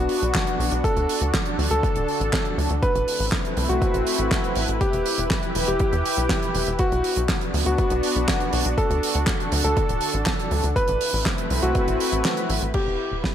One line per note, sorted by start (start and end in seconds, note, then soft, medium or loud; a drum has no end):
0.00 0.82 B3 medium
0.00 2.79 D4 medium
0.00 0.74 F#4 loud
0.00 2.79 F#4 medium
0.09 open hi-hat loud
0.22 0.33 B1 medium
0.22 closed hi-hat medium
0.34 kick loud
0.34 snare loud
0.34 clap loud
0.34 closed hi-hat medium
0.47 closed hi-hat medium
0.59 0.70 B1 loud
0.59 open hi-hat loud
0.72 0.83 B1 medium
0.72 closed hi-hat medium
0.84 2.81 D3 medium
0.84 1.25 A4 loud
0.84 2.81 A4 medium
0.84 kick loud
0.84 closed hi-hat medium
0.96 1.07 D2 medium
0.96 closed hi-hat medium
1.09 open hi-hat loud
1.21 1.32 D2 medium
1.21 closed hi-hat medium
1.34 kick loud
1.34 snare loud
1.34 clap loud
1.34 closed hi-hat medium
1.46 closed hi-hat medium
1.58 1.69 D2 loud
1.58 open hi-hat loud
1.71 1.82 D2 medium
1.71 2.73 A4 loud
1.71 closed hi-hat medium
1.83 kick loud
1.83 closed hi-hat medium
1.96 2.07 D1 medium
1.96 closed hi-hat medium
2.08 open hi-hat loud
2.20 2.31 A1 medium
2.20 closed hi-hat medium
2.33 kick loud
2.33 snare loud
2.33 clap loud
2.33 closed hi-hat medium
2.45 closed hi-hat medium
2.58 2.69 D2 loud
2.58 open hi-hat loud
2.69 2.81 D2 medium
2.69 closed hi-hat medium
2.82 4.79 A3 medium
2.82 4.79 C4 medium
2.82 6.75 E4 medium
2.82 3.23 B4 medium
2.82 6.75 B4 medium
2.82 kick loud
2.82 closed hi-hat medium
2.95 3.06 A1 medium
2.95 closed hi-hat medium
3.08 open hi-hat loud
3.20 3.31 A1 medium
3.20 open hi-hat medium
3.32 kick loud
3.32 snare loud
3.32 clap loud
3.45 closed hi-hat medium
3.57 3.68 C2 loud
3.57 open hi-hat loud
3.69 3.80 C2 medium
3.69 4.71 F#4 medium
3.69 closed hi-hat medium
3.82 kick loud
3.82 closed hi-hat medium
3.94 4.05 A1 medium
3.94 closed hi-hat medium
4.07 open hi-hat loud
4.18 4.30 A1 medium
4.18 closed hi-hat medium
4.31 kick loud
4.31 snare loud
4.31 clap medium
4.31 closed hi-hat medium
4.44 closed hi-hat medium
4.55 4.67 A1 loud
4.55 open hi-hat loud
4.68 4.79 A1 medium
4.68 closed hi-hat medium
4.81 6.77 E3 medium
4.81 5.22 G4 loud
4.81 6.77 G4 medium
4.81 kick loud
4.81 closed hi-hat medium
4.93 5.04 E1 medium
4.93 closed hi-hat medium
5.06 open hi-hat loud
5.18 5.29 E1 medium
5.18 closed hi-hat medium
5.30 kick loud
5.30 snare loud
5.30 clap loud
5.30 closed hi-hat medium
5.43 closed hi-hat medium
5.55 5.66 E1 loud
5.55 open hi-hat loud
5.68 5.79 E1 medium
5.68 6.69 G4 medium
5.68 closed hi-hat medium
5.79 kick loud
5.79 closed hi-hat medium
5.93 6.03 E2 medium
5.93 closed hi-hat medium
6.05 open hi-hat loud
6.17 6.28 B1 medium
6.17 closed hi-hat medium
6.29 kick loud
6.29 snare loud
6.29 clap loud
6.29 closed hi-hat medium
6.42 closed hi-hat medium
6.54 6.65 E1 loud
6.54 open hi-hat loud
6.67 6.78 E1 medium
6.67 closed hi-hat medium
6.79 8.76 B3 medium
6.79 10.72 D4 medium
6.79 10.72 F#4 medium
6.79 7.20 F#4 loud
6.79 kick loud
6.79 closed hi-hat medium
6.92 7.03 B1 medium
6.92 closed hi-hat medium
7.04 open hi-hat loud
7.16 7.27 B1 medium
7.16 closed hi-hat medium
7.28 kick loud
7.28 snare loud
7.28 clap loud
7.28 closed hi-hat medium
7.41 closed hi-hat medium
7.54 7.65 D2 loud
7.54 open hi-hat loud
7.66 7.77 D2 medium
7.66 8.68 F#4 medium
7.66 closed hi-hat medium
7.78 kick loud
7.78 closed hi-hat medium
7.90 8.02 B1 medium
7.90 closed hi-hat medium
8.03 open hi-hat loud
8.16 8.27 B1 medium
8.16 closed hi-hat medium
8.28 kick loud
8.28 snare loud
8.28 clap medium
8.28 closed hi-hat medium
8.40 closed hi-hat medium
8.53 8.64 B1 medium
8.53 open hi-hat loud
8.65 8.76 B1 medium
8.65 closed hi-hat medium
8.78 10.74 D3 medium
8.78 10.74 A4 medium
8.78 9.18 A4 medium
8.78 kick loud
8.78 closed hi-hat medium
8.90 9.01 D2 medium
8.90 closed hi-hat medium
9.03 open hi-hat loud
9.14 9.26 D2 medium
9.14 closed hi-hat medium
9.26 kick loud
9.26 snare loud
9.26 clap loud
9.26 closed hi-hat medium
9.40 closed hi-hat medium
9.52 9.63 D2 loud
9.52 open hi-hat loud
9.64 9.75 D2 medium
9.64 10.66 A4 medium
9.64 closed hi-hat medium
9.77 kick loud
9.77 closed hi-hat medium
9.89 10.00 D1 medium
9.89 closed hi-hat medium
10.01 open hi-hat loud
10.13 10.25 A1 medium
10.13 closed hi-hat medium
10.26 kick loud
10.26 snare loud
10.26 clap loud
10.26 closed hi-hat medium
10.39 closed hi-hat medium
10.51 10.62 D2 loud
10.51 open hi-hat loud
10.63 10.74 D2 medium
10.63 closed hi-hat medium
10.76 12.72 A3 medium
10.76 12.72 C4 medium
10.76 12.72 E4 medium
10.76 11.17 B4 loud
10.76 12.72 B4 medium
10.76 kick loud
10.76 closed hi-hat medium
10.88 10.99 A1 medium
10.88 closed hi-hat medium
11.01 open hi-hat loud
11.12 11.24 A1 medium
11.12 open hi-hat medium
11.26 kick loud
11.26 snare loud
11.26 clap loud
11.38 closed hi-hat medium
11.50 11.61 C2 medium
11.50 open hi-hat loud
11.62 11.74 C2 medium
11.62 12.64 F#4 medium
11.62 closed hi-hat medium
11.75 kick loud
11.75 closed hi-hat medium
11.88 11.98 A1 medium
11.88 closed hi-hat medium
12.00 open hi-hat loud
12.12 12.23 A1 medium
12.12 closed hi-hat medium
12.25 snare loud
12.25 clap loud
12.25 closed hi-hat medium
12.37 closed hi-hat medium
12.50 12.60 A1 loud
12.50 open hi-hat loud
12.62 12.73 A1 medium
12.62 closed hi-hat medium
12.74 13.35 E3 medium
12.74 13.35 E4 medium
12.74 13.35 G4 medium
12.74 13.15 G4 medium
12.74 13.35 B4 medium
12.74 kick loud
12.74 crash medium
12.87 12.98 E1 medium
13.12 13.22 E1 medium
13.24 kick loud
13.24 snare loud